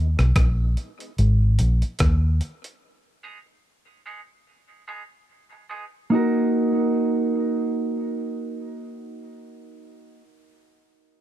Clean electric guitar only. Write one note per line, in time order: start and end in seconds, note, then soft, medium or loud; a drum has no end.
3.23 3.37 G#3 medium
3.23 3.37 B3 medium
3.23 3.37 D#4 medium
3.23 3.38 G#4 medium
4.06 4.19 G#3 medium
4.06 4.20 B3 medium
4.06 4.20 D#4 medium
4.06 4.20 G#4 medium
4.88 5.01 G#3 medium
4.88 5.02 B3 medium
4.88 5.02 D#4 medium
4.88 5.02 G#4 loud
5.52 muted clean electric guitar stroke soft
5.69 5.83 G#3 medium
5.69 5.84 B3 medium
5.69 5.84 D#4 medium
5.69 5.84 G#4 medium
6.10 10.21 A#3 medium
6.10 10.22 D#4 medium
6.10 10.24 F#4 medium
6.15 10.26 A#4 medium